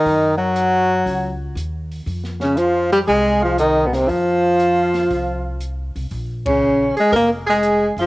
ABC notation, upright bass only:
X:1
M:4/4
L:1/8
Q:"Swing" 1/4=119
K:Fm
V:1 name="Upright bass" clef=bass
_G,,4 D,,2 E,,2 | F,,4 C,,4 | F,,4 C,,3 C,, | [K:Bbm] B,,,3 z F,,,3 G,,, |]